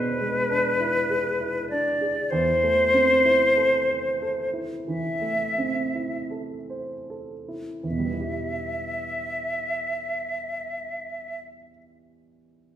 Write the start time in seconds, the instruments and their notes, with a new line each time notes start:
Already playing: grand piano B2 D4 E4 G#4, flute B4
0.21 grand piano G#3
0.50 grand piano D4
0.81 grand piano E4
1.10 grand piano G#4
1.40 grand piano E4
1.70 grand piano D4, flute D5
2.01 grand piano G#4
2.30 grand piano E2, flute C5
2.63 grand piano A3
2.94 grand piano C4
3.25 grand piano E4
3.57 grand piano A4
3.89 grand piano C5
4.22 grand piano A4
4.53 grand piano E4
4.87 grand piano E3, flute E5
5.21 grand piano A3
5.58 grand piano C4
5.95 grand piano E4
6.31 grand piano A4
6.70 grand piano C5
7.10 grand piano A4
7.48 grand piano E4
7.83 grand piano E2, flute E5
7.91 grand piano B2
7.98 grand piano G3
8.06 grand piano B3
8.13 grand piano E4
8.21 grand piano G4